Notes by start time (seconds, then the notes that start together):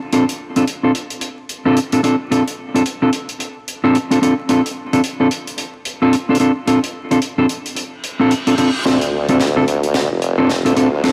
0.13 C4 D4 F4 A4, closed hi-hat
0.29 closed hi-hat
0.56 C4 D4 F4 A4, closed hi-hat
0.67 closed hi-hat
0.83 C4 D4 F4 A4
0.95 closed hi-hat
1.10 closed hi-hat
1.21 closed hi-hat
1.49 closed hi-hat
1.65 C4 D4 F4 A4
1.77 closed hi-hat
1.92 C4 D4 F4 A4, closed hi-hat
2.03 C4 D4 F4 A4, closed hi-hat
2.31 C4 D4 F4 A4, closed hi-hat
2.48 closed hi-hat
2.74 C4 D4 F4 A4, closed hi-hat
2.86 closed hi-hat
3.02 C4 D4 F4 A4
3.13 closed hi-hat
3.29 closed hi-hat
3.40 closed hi-hat
3.68 closed hi-hat
3.84 C4 D4 F4 A4
3.95 closed hi-hat
4.10 C4 D4 F4 A4, closed hi-hat
4.22 C4 D4 F4 A4, closed hi-hat
4.49 C4 D4 F4 A4, closed hi-hat
4.66 closed hi-hat
4.93 C4 D4 F4 A4, closed hi-hat
5.04 closed hi-hat
5.20 C4 D4 F4 A4
5.31 closed hi-hat
5.47 closed hi-hat
5.58 closed hi-hat
5.85 closed hi-hat
6.02 C4 D4 F4 A4
6.13 closed hi-hat
6.29 C4 D4 F4 A4
6.35 closed hi-hat
6.40 C4 D4 F4 A4, closed hi-hat
6.67 C4 D4 F4 A4, closed hi-hat
6.84 closed hi-hat
7.11 C4 D4 F4 A4, closed hi-hat
7.22 closed hi-hat
7.38 C4 D4 F4 A4
7.49 closed hi-hat
7.66 closed hi-hat
7.76 closed hi-hat, reverse cymbal
8.04 closed hi-hat
8.19 C4 D4 F4 A4
8.31 closed hi-hat
8.47 C4 D4 F4 A4, closed hi-hat
8.58 C4 D4 F4 A4, closed hi-hat
8.85 D2 C4 D4 F4 A4, snare, closed hi-hat, riser
9.01 closed hi-hat
9.29 D2 C4 D4 F4 A4, closed hi-hat
9.40 snare, closed hi-hat
9.56 C4 D4 F4 A4
9.68 closed hi-hat
9.83 closed hi-hat
9.94 snare, closed hi-hat
10.11 F1
10.22 closed hi-hat
10.38 C4 D4 F4 A4
10.50 snare, closed hi-hat
10.65 D2 C4 D4 F4 A4, closed hi-hat
10.76 C4 D4 F4 A4, closed hi-hat
11.03 D2 C4 D4 F4 A4, snare, closed hi-hat